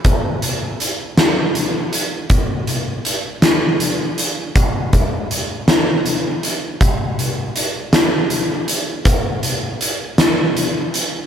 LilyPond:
\new DrumStaff \with { instrumentName = "Drums" } \drummode { \time 6/8 \tempo 4. = 53 <hh bd>8 hh8 hh8 <hh sn>8 hh8 hh8 | <hh bd>8 hh8 hh8 <hh sn>8 hh8 hh8 | <hh bd>8 <hh bd>8 hh8 <hh sn>8 hh8 hh8 | <hh bd>8 hh8 hh8 <hh sn>8 hh8 hh8 |
<hh bd>8 hh8 hh8 <hh sn>8 hh8 hh8 | }